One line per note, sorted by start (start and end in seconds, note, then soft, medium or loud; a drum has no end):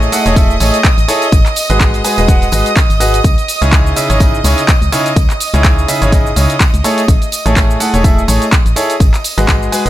0.00 9.89 D#5 medium
0.00 9.89 D#6 medium
0.00 shaker soft
0.12 0.23 A3 medium
0.12 0.23 E4 medium
0.12 0.23 G#4 medium
0.12 0.23 A4 medium
0.12 0.23 F#5 loud
0.12 open hi-hat loud
0.12 tambourine medium
0.12 shaker medium
0.26 0.57 E1 medium
0.26 0.35 A3 medium
0.26 0.35 E4 medium
0.26 0.35 G#4 medium
0.26 0.35 A4 medium
0.26 0.35 C#5 loud
0.26 closed hi-hat medium
0.26 tambourine soft
0.26 shaker soft
0.36 0.53 A3 medium
0.36 0.53 E4 medium
0.36 0.53 G#4 medium
0.36 0.53 A4 medium
0.36 0.53 E5 loud
0.36 kick loud
0.36 closed hi-hat medium
0.36 tambourine medium
0.36 shaker soft
0.51 shaker soft
0.60 0.71 A1 loud
0.60 0.77 A3 medium
0.60 0.77 E4 medium
0.60 0.77 G#4 medium
0.60 0.77 A4 medium
0.60 0.77 C#5 loud
0.60 open hi-hat loud
0.60 tambourine medium
0.60 shaker medium
0.74 closed hi-hat medium
0.74 tambourine soft
0.74 shaker soft
0.84 kick loud
0.84 clap loud
0.84 closed hi-hat medium
0.84 tambourine medium
0.84 shaker soft
0.98 1.06 A1 medium
0.98 closed hi-hat soft
0.98 shaker soft
1.08 1.25 E4 loud
1.08 1.25 G#4 medium
1.08 1.25 A4 medium
1.08 1.25 C#5 loud
1.08 open hi-hat loud
1.08 tambourine medium
1.08 shaker medium
1.22 closed hi-hat medium
1.22 tambourine soft
1.22 shaker soft
1.32 1.43 G#1 loud
1.32 kick loud
1.32 closed hi-hat medium
1.32 tambourine medium
1.32 shaker soft
1.46 clap soft
1.46 closed hi-hat soft
1.46 shaker soft
1.56 open hi-hat loud
1.56 tambourine medium
1.56 shaker medium
1.70 2.01 G#1 loud
1.70 2.02 G#3 medium
1.70 2.02 F#4 medium
1.70 2.02 G#4 medium
1.70 2.02 B4 medium
1.70 2.02 D#5 loud
1.70 closed hi-hat medium
1.70 tambourine soft
1.70 shaker soft
1.80 kick loud
1.80 clap loud
1.80 closed hi-hat medium
1.80 tambourine medium
1.80 shaker soft
1.94 closed hi-hat soft
1.94 shaker soft
2.04 2.15 G#3 medium
2.04 2.15 F#4 medium
2.04 2.15 G#4 medium
2.04 2.15 B4 medium
2.04 2.15 G#5 medium
2.04 open hi-hat loud
2.04 tambourine loud
2.04 shaker medium
2.18 2.49 D#1 medium
2.18 2.27 G#3 medium
2.18 2.27 F#4 medium
2.18 2.27 G#4 medium
2.18 2.27 B4 medium
2.18 2.27 D#5 loud
2.18 closed hi-hat medium
2.18 tambourine soft
2.18 shaker soft
2.28 2.45 G#3 loud
2.28 2.45 F#4 medium
2.28 2.45 G#4 medium
2.28 2.45 B4 medium
2.28 2.45 F#5 loud
2.28 kick loud
2.28 closed hi-hat medium
2.28 tambourine medium
2.28 shaker soft
2.42 closed hi-hat soft
2.42 tambourine soft
2.42 shaker soft
2.52 2.63 G#1 loud
2.52 2.69 G#3 medium
2.52 2.69 F#4 medium
2.52 2.69 G#4 medium
2.52 2.69 B4 medium
2.52 2.69 D#5 loud
2.52 open hi-hat loud
2.52 tambourine medium
2.52 shaker medium
2.66 closed hi-hat medium
2.66 tambourine soft
2.66 shaker soft
2.76 kick loud
2.76 clap loud
2.76 closed hi-hat medium
2.76 tambourine medium
2.76 shaker soft
2.90 3.21 G#1 medium
2.90 closed hi-hat soft
2.90 tambourine soft
2.90 shaker soft
3.00 3.17 F#4 loud
3.00 3.17 G#4 medium
3.00 3.17 B4 medium
3.00 3.17 D#5 loud
3.00 open hi-hat loud
3.00 tambourine loud
3.00 shaker medium
3.14 closed hi-hat soft
3.14 tambourine soft
3.14 shaker soft
3.24 3.35 C#2 loud
3.24 kick loud
3.24 closed hi-hat medium
3.24 tambourine medium
3.24 shaker soft
3.38 closed hi-hat soft
3.38 shaker soft
3.48 open hi-hat loud
3.48 tambourine medium
3.48 shaker medium
3.61 3.93 C#2 loud
3.61 3.94 C#3 medium
3.61 3.94 D#4 medium
3.61 3.94 E4 medium
3.61 3.94 G#4 medium
3.61 3.94 C#5 loud
3.61 closed hi-hat soft
3.61 tambourine soft
3.61 shaker soft
3.72 kick loud
3.72 clap loud
3.72 closed hi-hat medium
3.72 tambourine soft
3.72 shaker soft
3.87 shaker soft
3.96 4.06 C#3 medium
3.96 4.06 D#4 medium
3.96 4.06 E4 medium
3.96 4.07 G#4 medium
3.96 4.06 E5 loud
3.96 open hi-hat loud
3.96 tambourine loud
3.96 shaker medium
4.10 4.41 G#1 medium
4.10 4.19 C#3 medium
4.10 4.19 D#4 medium
4.10 4.19 E4 medium
4.10 4.19 G#4 medium
4.10 4.19 C#5 loud
4.10 closed hi-hat medium
4.10 tambourine soft
4.10 shaker soft
4.20 4.37 C#3 medium
4.20 4.37 D#4 medium
4.20 4.37 E4 medium
4.20 4.37 G#4 medium
4.20 4.37 D#5 loud
4.20 kick loud
4.20 closed hi-hat medium
4.20 tambourine medium
4.20 shaker soft
4.35 shaker soft
4.44 4.55 C#2 loud
4.44 4.61 C#3 medium
4.44 4.61 D#4 medium
4.44 4.61 E4 medium
4.44 4.61 G#4 medium
4.44 4.61 C#5 loud
4.44 open hi-hat loud
4.44 tambourine loud
4.44 shaker medium
4.58 closed hi-hat medium
4.58 tambourine soft
4.58 shaker soft
4.68 kick loud
4.68 clap loud
4.68 closed hi-hat medium
4.68 tambourine medium
4.68 shaker soft
4.82 4.90 C#2 medium
4.82 closed hi-hat soft
4.82 shaker soft
4.92 5.09 C#3 loud
4.92 5.09 D#4 medium
4.92 5.09 E4 medium
4.92 5.09 G#4 medium
4.92 5.09 C#5 loud
4.92 open hi-hat loud
4.92 tambourine medium
4.92 shaker medium
5.06 closed hi-hat medium
5.06 tambourine soft
5.06 shaker soft
5.16 5.27 C#2 loud
5.16 kick loud
5.16 closed hi-hat medium
5.16 tambourine soft
5.16 shaker soft
5.30 clap soft
5.30 closed hi-hat soft
5.30 shaker soft
5.40 open hi-hat loud
5.40 tambourine medium
5.40 shaker medium
5.54 5.85 C#2 loud
5.54 5.86 C#3 medium
5.54 5.86 D#4 medium
5.54 5.86 E4 medium
5.54 5.86 G#4 medium
5.54 5.86 C#5 loud
5.54 closed hi-hat medium
5.54 tambourine soft
5.54 shaker soft
5.64 kick loud
5.64 clap loud
5.64 closed hi-hat medium
5.64 tambourine soft
5.64 shaker soft
5.79 shaker soft
5.88 5.99 C#3 medium
5.88 5.99 D#4 medium
5.88 5.99 E4 medium
5.88 5.99 G#4 medium
5.88 5.99 E5 loud
5.88 open hi-hat loud
5.88 tambourine medium
5.88 shaker medium
6.01 6.33 G#1 medium
6.01 6.11 C#3 medium
6.01 6.11 D#4 medium
6.01 6.11 E4 medium
6.01 6.11 G#4 medium
6.01 6.11 C#5 medium
6.01 closed hi-hat medium
6.01 tambourine soft
6.01 shaker soft
6.12 6.29 C#3 loud
6.12 6.29 D#4 medium
6.12 6.29 E4 medium
6.12 6.29 G#4 medium
6.12 kick loud
6.12 closed hi-hat medium
6.12 tambourine medium
6.12 shaker soft
6.27 shaker soft
6.36 6.47 C#2 loud
6.36 6.53 C#3 medium
6.36 6.53 D#4 medium
6.36 6.53 E4 medium
6.36 6.53 G#4 medium
6.36 6.53 C#5 medium
6.36 open hi-hat loud
6.36 tambourine medium
6.36 shaker medium
6.49 closed hi-hat medium
6.49 tambourine soft
6.49 shaker soft
6.60 kick loud
6.60 clap loud
6.60 closed hi-hat medium
6.60 tambourine soft
6.60 shaker soft
6.74 6.82 C#2 medium
6.74 closed hi-hat soft
6.74 shaker soft
6.84 7.01 A3 loud
6.84 7.01 E4 medium
6.84 7.01 G#4 loud
6.84 7.01 A4 medium
6.84 7.01 C#5 loud
6.84 open hi-hat loud
6.84 tambourine medium
6.84 shaker medium
6.98 closed hi-hat medium
6.98 tambourine soft
6.98 shaker soft
7.08 7.19 A1 loud
7.08 kick loud
7.08 closed hi-hat medium
7.08 tambourine soft
7.08 shaker soft
7.22 closed hi-hat soft
7.22 shaker soft
7.32 open hi-hat loud
7.32 tambourine medium
7.32 shaker medium
7.46 7.77 A1 loud
7.46 7.78 A3 medium
7.46 7.78 E4 medium
7.46 7.78 G#4 medium
7.46 7.78 A4 medium
7.46 7.78 C#5 loud
7.46 closed hi-hat medium
7.46 tambourine soft
7.46 shaker soft
7.56 kick loud
7.56 clap loud
7.56 closed hi-hat medium
7.56 tambourine soft
7.56 shaker soft
7.71 shaker soft
7.80 7.90 A3 medium
7.80 7.90 E4 medium
7.80 7.90 G#4 medium
7.80 7.90 A4 medium
7.80 7.90 F#5 loud
7.80 open hi-hat loud
7.80 tambourine loud
7.80 shaker medium
7.94 8.25 E1 medium
7.94 8.03 A3 medium
7.94 8.03 E4 medium
7.94 8.03 G#4 medium
7.94 8.03 A4 medium
7.94 8.03 C#5 loud
7.94 closed hi-hat medium
7.94 tambourine soft
7.94 shaker soft
8.04 8.21 A3 loud
8.04 8.21 E4 medium
8.04 8.21 G#4 medium
8.04 8.21 A4 medium
8.04 8.21 E5 loud
8.04 kick loud
8.04 closed hi-hat medium
8.04 tambourine medium
8.04 shaker soft
8.19 shaker soft
8.28 8.39 A1 loud
8.28 8.45 A3 medium
8.28 8.45 E4 medium
8.28 8.45 G#4 medium
8.28 8.45 A4 medium
8.28 8.45 C#5 medium
8.28 open hi-hat loud
8.28 tambourine medium
8.28 shaker medium
8.42 closed hi-hat medium
8.42 tambourine soft
8.42 shaker soft
8.52 kick loud
8.52 clap loud
8.52 closed hi-hat medium
8.52 tambourine soft
8.52 shaker soft
8.66 8.74 A1 medium
8.66 closed hi-hat soft
8.66 shaker soft
8.76 8.93 E4 loud
8.76 8.93 G#4 loud
8.76 8.93 A4 medium
8.76 8.93 C#5 loud
8.76 open hi-hat loud
8.76 tambourine medium
8.76 shaker medium
8.90 closed hi-hat medium
8.90 tambourine soft
8.90 shaker soft
9.00 9.11 G#1 loud
9.00 kick loud
9.00 closed hi-hat medium
9.00 tambourine medium
9.00 shaker soft
9.13 clap soft
9.13 closed hi-hat soft
9.13 tambourine soft
9.13 shaker soft
9.24 open hi-hat loud
9.24 tambourine medium
9.24 shaker medium
9.38 9.69 G#1 loud
9.38 9.70 G#3 medium
9.38 9.70 F#4 medium
9.38 9.70 G#4 medium
9.38 9.70 B4 medium
9.38 9.70 D#5 loud
9.38 closed hi-hat medium
9.38 tambourine soft
9.38 shaker soft
9.48 kick loud
9.48 clap loud
9.48 closed hi-hat medium
9.48 tambourine medium
9.48 shaker soft
9.63 shaker soft
9.72 9.82 G#3 medium
9.72 9.82 F#4 medium
9.72 9.82 G#4 medium
9.72 9.82 B4 medium
9.72 9.82 G#5 loud
9.72 open hi-hat loud
9.72 tambourine medium
9.72 shaker medium
9.85 9.89 D#1 medium
9.85 9.89 G#3 medium
9.85 9.89 F#4 medium
9.85 9.89 G#4 medium
9.85 9.89 B4 medium
9.85 9.89 D#5 loud
9.85 closed hi-hat medium
9.85 tambourine soft